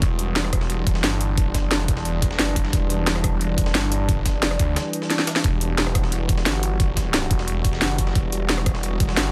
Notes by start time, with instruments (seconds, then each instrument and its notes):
Already playing: synth drone E3 G3
0.02 detuned saw bass E1, synth drone D4, kick, closed hi-hat
0.19 closed hi-hat
0.36 snare, closed hi-hat
0.44 cross-stick
0.53 kick, cross-stick, closed hi-hat
0.61 snare
0.70 closed hi-hat
0.87 detuned saw bass E1, kick, closed hi-hat
0.95 snare
1.04 detuned saw bass G1, snare, closed hi-hat
1.21 closed hi-hat
1.38 kick, closed hi-hat
1.54 kick, snare, closed hi-hat
1.63 detuned saw bass F#1
1.71 snare, closed hi-hat
1.88 detuned saw bass E1, kick, closed hi-hat
1.97 snare
2.05 closed hi-hat
2.22 kick, closed hi-hat
2.31 snare
2.39 detuned saw bass F#1, snare, closed hi-hat
2.56 kick, closed hi-hat
2.65 snare
2.73 detuned saw bass E1, kick, closed hi-hat
2.90 closed hi-hat
3.07 snare, closed hi-hat
3.16 cross-stick
3.24 kick, cross-stick, closed hi-hat
3.41 closed hi-hat
3.58 detuned saw bass E1, kick, closed hi-hat
3.66 snare
3.75 detuned saw bass G1, snare, closed hi-hat
3.92 closed hi-hat
4.09 kick, closed hi-hat
4.26 kick, snare, closed hi-hat
4.34 detuned saw bass F#1
4.43 snare, closed hi-hat
4.51 cross-stick
4.59 detuned saw bass D2, kick, closed hi-hat
4.76 snare, closed hi-hat
4.93 closed hi-hat
5.02 snare
5.10 snare, closed hi-hat
5.19 snare
5.27 snare, closed hi-hat
5.36 snare, closed hi-hat
5.44 detuned saw bass E1, synth drone F#4, kick, closed hi-hat
5.61 closed hi-hat
5.78 snare, closed hi-hat
5.87 cross-stick
5.95 kick, cross-stick, closed hi-hat
6.04 snare
6.12 closed hi-hat
6.29 detuned saw bass E1, kick, closed hi-hat
6.38 snare
6.46 detuned saw bass G1, snare, closed hi-hat
6.63 closed hi-hat
6.80 kick, closed hi-hat
6.97 kick, snare, closed hi-hat
7.14 snare, closed hi-hat
7.31 detuned saw bass E1, kick, closed hi-hat
7.39 snare
7.48 closed hi-hat
7.65 kick, closed hi-hat
7.73 snare
7.82 detuned saw bass F#1, snare, closed hi-hat
7.98 kick, closed hi-hat
8.07 snare
8.15 detuned saw bass E1, kick, closed hi-hat
8.32 closed hi-hat
8.49 snare, closed hi-hat
8.58 cross-stick
8.66 kick, cross-stick, closed hi-hat
8.75 snare
8.83 closed hi-hat
9.00 detuned saw bass E1, kick, closed hi-hat
9.09 snare
9.17 detuned saw bass G1, snare, closed hi-hat